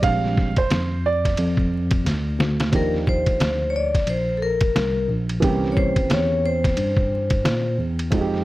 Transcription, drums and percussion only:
0.03 kick, ride
0.24 snare
0.38 kick, snare
0.56 kick, ride
0.70 snare, hi-hat pedal, ride
1.25 kick, snare, ride
1.37 ride
1.57 kick
1.91 kick, ride
2.06 snare, hi-hat pedal, ride
2.40 snare
2.60 snare, ride
2.73 kick, ride
2.94 snare
3.07 kick
3.26 kick, ride
3.40 snare, hi-hat pedal, ride
3.95 kick, snare, ride
4.07 ride
4.61 kick, ride
4.76 snare, hi-hat pedal, ride
5.29 ride
5.42 kick, ride
5.64 snare
5.77 kick
5.96 kick, ride
6.10 snare, hi-hat pedal, ride
6.64 kick, snare, ride
6.77 ride
6.97 kick
7.30 kick, ride
7.45 snare, hi-hat pedal, ride
7.99 ride
8.12 kick, ride
8.34 snare

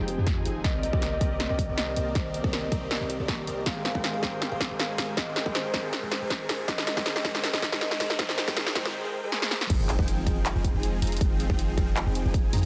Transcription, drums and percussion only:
0.08 closed hi-hat
0.27 kick, snare, closed hi-hat
0.45 closed hi-hat
0.64 kick, snare, closed hi-hat
0.83 closed hi-hat
0.93 kick
1.02 snare, closed hi-hat
1.21 kick, closed hi-hat
1.40 snare, closed hi-hat
1.59 kick, closed hi-hat
1.78 snare, closed hi-hat
1.96 closed hi-hat
2.15 kick, snare, closed hi-hat
2.34 closed hi-hat
2.44 kick
2.53 snare, closed hi-hat
2.72 kick, closed hi-hat
2.91 snare, closed hi-hat
3.10 closed hi-hat
3.28 kick, snare, closed hi-hat
3.47 closed hi-hat
3.66 kick, snare, closed hi-hat
3.85 snare, closed hi-hat
3.95 kick
4.04 snare, closed hi-hat
4.23 kick, snare, closed hi-hat
4.42 snare, closed hi-hat
4.60 kick, snare, closed hi-hat
4.80 snare, closed hi-hat
4.98 snare, open hi-hat
5.17 kick, snare, closed hi-hat
5.36 snare, closed hi-hat
5.46 kick
5.55 snare, closed hi-hat
5.74 kick, snare, closed hi-hat
5.93 snare, closed hi-hat
6.12 snare, closed hi-hat
6.30 kick, snare, closed hi-hat
6.49 snare, open hi-hat
6.68 kick, snare, closed hi-hat
6.78 snare
6.87 snare, closed hi-hat
6.97 kick, snare
7.06 snare, closed hi-hat
7.16 snare
7.25 kick, snare, closed hi-hat
7.35 snare
7.44 snare, closed hi-hat
7.54 snare
7.62 kick, snare, closed hi-hat
7.72 snare
7.81 snare, closed hi-hat
7.91 snare
8.00 snare, open hi-hat
8.10 snare
8.19 kick, snare, closed hi-hat
8.29 snare
8.38 snare, closed hi-hat
8.48 kick, snare
8.57 snare, closed hi-hat
8.67 snare
8.75 kick, snare, closed hi-hat
8.86 snare
9.32 snare
9.42 snare
9.51 snare
9.61 snare
9.70 kick, closed hi-hat, crash
9.89 clap, closed hi-hat
9.99 kick
10.08 closed hi-hat
10.27 kick, closed hi-hat
10.46 clap, closed hi-hat
10.64 kick, closed hi-hat
10.83 closed hi-hat
11.02 open hi-hat
11.07 closed hi-hat
11.12 closed hi-hat
11.17 closed hi-hat
11.21 kick, closed hi-hat
11.40 closed hi-hat
11.50 kick
11.59 closed hi-hat
11.78 kick, closed hi-hat
11.96 clap, closed hi-hat
12.15 closed hi-hat
12.34 kick, closed hi-hat
12.53 open hi-hat
12.58 closed hi-hat

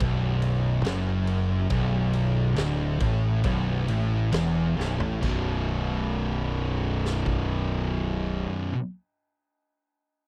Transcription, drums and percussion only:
0.00 kick, ride
0.42 ride
0.85 snare, ride
1.27 ride
1.70 kick, ride
2.13 ride
2.56 snare, ride
3.00 kick, ride
3.44 kick, ride
3.88 ride
4.32 snare, ride
4.80 snare
5.00 floor tom
5.23 kick, crash
7.06 snare
7.26 kick

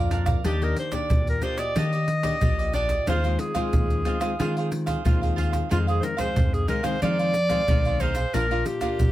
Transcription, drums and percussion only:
0.11 pandeiro, surdo
0.26 pandeiro, shaker, surdo
0.44 pandeiro, shaker, surdo
0.62 pandeiro, shaker
0.76 pandeiro
0.92 pandeiro, shaker, surdo
1.10 pandeiro, shaker, surdo
1.27 pandeiro, shaker
1.42 pandeiro, shaker, surdo
1.58 pandeiro, shaker
1.76 pandeiro, shaker, surdo
1.93 pandeiro, shaker
2.08 pandeiro
2.23 pandeiro, shaker, surdo
2.41 pandeiro, shaker, surdo
2.59 pandeiro, shaker
2.73 pandeiro, shaker
2.89 pandeiro, shaker, surdo
3.07 pandeiro, shaker, surdo
3.24 pandeiro, shaker
3.39 pandeiro
3.55 pandeiro, shaker, surdo
3.73 pandeiro, shaker, surdo
3.90 pandeiro, shaker
4.05 pandeiro, surdo
4.21 pandeiro, shaker
4.40 pandeiro, shaker, surdo
4.57 pandeiro, shaker
4.72 pandeiro, shaker
4.87 pandeiro, shaker, surdo
5.05 pandeiro, shaker, surdo
5.23 pandeiro, shaker
5.38 pandeiro
5.53 pandeiro, shaker, surdo
5.71 pandeiro, shaker, surdo
5.88 pandeiro, shaker
6.03 pandeiro, shaker
6.18 pandeiro, shaker, surdo
6.36 pandeiro, shaker, surdo
6.54 pandeiro, shaker
6.68 pandeiro, shaker, surdo
6.84 pandeiro, shaker
7.02 pandeiro, shaker, surdo
7.19 pandeiro, shaker
7.34 pandeiro, shaker
7.49 pandeiro, shaker, surdo
7.68 pandeiro, shaker, surdo
7.85 pandeiro, shaker
8.00 pandeiro, shaker, surdo
8.15 pandeiro, shaker, surdo
8.34 pandeiro, shaker, surdo
8.51 pandeiro, shaker
8.66 pandeiro, shaker
8.81 pandeiro, shaker, surdo
8.99 pandeiro, shaker, surdo

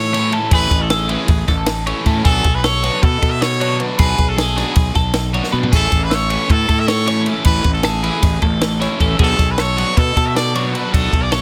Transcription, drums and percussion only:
0.14 snare, ride
0.32 ride
0.51 kick, ride
0.71 kick, ride
0.90 snare, ride
1.09 ride
1.28 kick, ride
1.48 kick, snare, ride
1.66 snare, ride
1.87 ride
2.06 kick, ride
2.25 kick, ride
2.44 kick, ride
2.64 snare, ride
2.84 ride
3.03 kick, ride
3.22 kick, ride
3.42 snare, ride
3.61 ride
3.80 ride
3.99 kick, ride
4.18 kick, ride
4.38 snare, ride
4.58 snare, ride
4.76 kick, ride
4.95 kick, snare, ride
5.14 snare, ride
5.34 ride
5.43 snare
5.63 floor tom
5.73 kick, splash, crash
5.92 kick, ride
6.11 snare, ride
6.30 ride
6.50 kick, ride
6.69 kick, ride
6.88 snare, ride
7.07 ride
7.26 ride
7.45 kick, ride
7.64 kick, ride
7.83 snare, ride
8.04 ride
8.23 kick, snare, ride
8.42 kick, ride
8.61 snare, ride
8.81 snare, ride
9.00 kick, ride
9.19 kick, ride
9.39 kick, snare, ride
9.58 snare, ride
9.78 ride
9.97 kick, snare, ride
10.16 kick, ride
10.36 snare, ride
10.55 ride
10.75 ride
10.94 kick, ride
11.13 kick, ride
11.32 snare, ride

